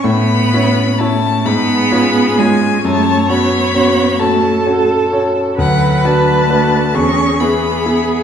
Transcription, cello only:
\new Staff \with { instrumentName = "Cello" } { \time 6/8 \key a \major \tempo 4. = 44 b4 a8 b4 gis8 | a8 b4 a8 r4 | fis8 a4 cis'8 b4 | }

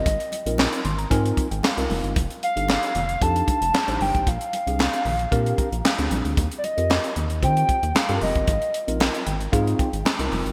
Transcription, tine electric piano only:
\new Staff \with { instrumentName = "Tine electric piano" } { \time 4/4 \key aes \lydian \tempo 4 = 114 << { r4. c'''16 bes''16 aes''8. g''16 f''4 | r1 | r2 r8 bes''8 f''4 | r1 |
r4. g''8 f''8 g''8 aes''8 bes''8 | } \\ { r8. <c' ees' f' bes'>8. r8 <c' ees' f' bes'>8. r8 <c' ees' f' bes'>8. | r8. <d' ees' g' a'>8. r8 <d' ees' g' a'>8. r8 <d' ees' g' c''>8. | r8. <c' d' g' aes'>8. r8 <c' d' g' bes'>8. r8 <c' d' g' aes'>8. | r8. <c' f' g' bes'>8. r8 <c' f' g' c''>8. r8 <c' f' g' a' bes'>8. |
r8. <c' ees' f' bes'>8. r8 <c' ees' f' aes'>8. r8 <c' ees' f' bes'>8. | } >> }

